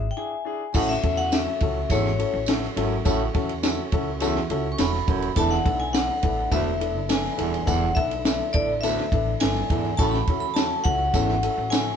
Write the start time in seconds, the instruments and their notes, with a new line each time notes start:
Already playing: vibraphone E5
0.11 vibraphone G5
0.17 grand piano D4 E4 G#4, vibraphone G#5
0.45 grand piano D4 E4 G#4
0.74 upright bass A1, baritone saxophone A2, tonewheel organ A3 C#4 F#4, grand piano C#4 E4 F#4 A4, vibraphone F#5, kick, crash, tambourine
0.89 vibraphone E5, snare
1.03 upright bass E2, grand piano C#4 E4 F#4 A4, kick, ride
1.18 vibraphone F#5, ride
1.32 grand piano C#4 E4 F#4 A4, vibraphone E5, snare, ride, tambourine
1.60 upright bass C#2, grand piano C#4 E4 F#4 A4, kick, ride
1.90 upright bass G#1, baritone saxophone E2, grand piano C#4 E4 F#4 A4, vibraphone C#5, kick, ride, tambourine
2.05 snare
2.18 grand piano C#4 E4 F#4 A4, ride
2.33 upright bass A1
2.46 grand piano C#4 E4 F#4 A4, snare, ride, tambourine
2.63 snare
2.76 upright bass G#1, baritone saxophone F#2, grand piano C#4 E4 F#4 A4, ride
3.05 upright bass A1, baritone saxophone A2, grand piano C#4 E4 F#4 A4, kick, ride, tambourine
3.34 upright bass E2, grand piano C#4 E4 F#4 A4, kick, ride
3.49 ride
3.63 grand piano C#4 E4 F#4 A4, snare, ride, tambourine
3.92 upright bass C#2, grand piano C#4 E4 F#4 A4, kick, ride
4.20 baritone saxophone E2, grand piano C#4 E4 F#4 A4, ride, tambourine
4.36 snare
4.50 upright bass C#2, grand piano C#4 E4 F#4 A4, ride
4.72 vibraphone C#6
4.78 upright bass E1, grand piano C#4 E4 F#4 A4, vibraphone B5, snare, ride, tambourine
4.93 snare
5.07 upright bass D#1, baritone saxophone F#2, grand piano C#4 E4 F#4 A4, kick, ride
5.22 ride
5.35 upright bass E1, baritone saxophone E2, tonewheel organ A3 D4 E4, grand piano B3 D4 E4 A4, vibraphone A5, kick, ride, tambourine
5.51 vibraphone F#5, snare
5.65 upright bass B1, grand piano B3 D4 E4 A4, kick, ride
5.80 vibraphone G#5
5.93 grand piano B3 D4 E4 A4, vibraphone F#5, snare, ride, tambourine
6.23 upright bass A1, grand piano B3 D4 E4 A4, kick, ride
6.51 upright bass E1, baritone saxophone D2, grand piano B3 D4 E4 A4, vibraphone E5, kick, ride, tambourine
6.80 grand piano B3 D4 E4 A4, ride
6.95 upright bass F#1
7.09 grand piano B3 D4 E4 A4, vibraphone G#5, snare, ride, tambourine
7.25 snare
7.37 upright bass D#1, baritone saxophone E2, grand piano B3 D4 E4 A4, ride
7.54 ride
7.66 upright bass E1, baritone saxophone E2, grand piano B3 D4 E4 A4, vibraphone F#5, kick, ride, tambourine
7.95 upright bass B1, grand piano B3 D4 E4 A4, vibraphone E5, kick, ride
8.11 ride
8.25 grand piano B3 D4 E4 A4, snare, ride, tambourine
8.53 upright bass A1, grand piano B3 D4 E4 A4, vibraphone D5, kick, ride
8.81 baritone saxophone D2, grand piano B3 D4 E4 A4, vibraphone E5, ride, tambourine
8.98 snare
9.12 upright bass A1, grand piano B3 D4 E4 A4, kick, ride
9.40 upright bass G1, grand piano B3 D4 E4 A4, vibraphone G#5, snare, ride, tambourine
9.55 snare
9.70 upright bass G#1, baritone saxophone E2, grand piano B3 D4 E4 A4, kick, ride
9.97 upright bass A1, baritone saxophone A2, tonewheel organ C#4 F#4, grand piano C#4 E4 F#4 A4, vibraphone A5, kick, ride, tambourine
10.11 vibraphone B5, snare
10.27 upright bass E2, grand piano C#4 E4 F#4 A4, kick, ride
10.40 vibraphone B5
10.54 grand piano C#4 E4 F#4 A4, vibraphone A5, snare, ride, tambourine
10.84 upright bass C#2, grand piano C#4 E4 F#4 A4, vibraphone F#5, kick, ride
11.13 upright bass G#1, baritone saxophone E2, grand piano C#4 E4 F#4 A4, kick, ride, tambourine
11.29 snare
11.43 grand piano C#4 E4 F#4 A4, ride
11.57 upright bass A1
11.70 grand piano C#4 E4 F#4 A4, vibraphone G#5, snare, ride, tambourine